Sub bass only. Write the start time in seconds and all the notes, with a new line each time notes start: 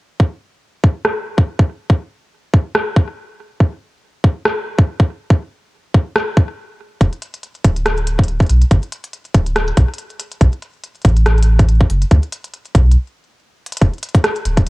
7.01 E1
7.64 D1
8.50 B1
8.71 G1
9.35 D1
9.77 B1
10.41 B1
11.05 A1
11.90 F#1
12.11 D2
12.75 B1
13.81 E1
14.45 D1